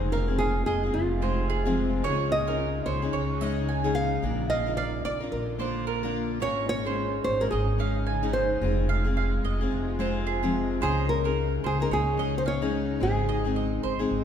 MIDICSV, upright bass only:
0, 0, Header, 1, 2, 480
1, 0, Start_track
1, 0, Tempo, 548446
1, 1785, Time_signature, 4, 2, 24, 8
1, 12463, End_track
2, 0, Start_track
2, 0, Title_t, "Upright bass"
2, 0, Program_c, 0, 32
2, 0, Note_on_c, 0, 29, 104
2, 552, Note_off_c, 0, 29, 0
2, 585, Note_on_c, 0, 29, 96
2, 806, Note_off_c, 0, 29, 0
2, 831, Note_on_c, 0, 29, 102
2, 1753, Note_off_c, 0, 29, 0
2, 1779, Note_on_c, 0, 37, 98
2, 2467, Note_off_c, 0, 37, 0
2, 2503, Note_on_c, 0, 37, 90
2, 2725, Note_off_c, 0, 37, 0
2, 2742, Note_on_c, 0, 37, 97
2, 3668, Note_off_c, 0, 37, 0
2, 3701, Note_on_c, 0, 34, 105
2, 4388, Note_off_c, 0, 34, 0
2, 4425, Note_on_c, 0, 34, 81
2, 4645, Note_off_c, 0, 34, 0
2, 4664, Note_on_c, 0, 34, 93
2, 5589, Note_off_c, 0, 34, 0
2, 5622, Note_on_c, 0, 32, 90
2, 6308, Note_off_c, 0, 32, 0
2, 6343, Note_on_c, 0, 32, 87
2, 6564, Note_off_c, 0, 32, 0
2, 6589, Note_on_c, 0, 32, 100
2, 7512, Note_off_c, 0, 32, 0
2, 7539, Note_on_c, 0, 29, 112
2, 8227, Note_off_c, 0, 29, 0
2, 8264, Note_on_c, 0, 29, 92
2, 8485, Note_off_c, 0, 29, 0
2, 8505, Note_on_c, 0, 29, 93
2, 9430, Note_off_c, 0, 29, 0
2, 9468, Note_on_c, 0, 37, 114
2, 10152, Note_off_c, 0, 37, 0
2, 10184, Note_on_c, 0, 37, 92
2, 10406, Note_off_c, 0, 37, 0
2, 10427, Note_on_c, 0, 37, 88
2, 11352, Note_off_c, 0, 37, 0
2, 11389, Note_on_c, 0, 32, 105
2, 12074, Note_off_c, 0, 32, 0
2, 12114, Note_on_c, 0, 32, 80
2, 12332, Note_off_c, 0, 32, 0
2, 12349, Note_on_c, 0, 32, 95
2, 12463, Note_off_c, 0, 32, 0
2, 12463, End_track
0, 0, End_of_file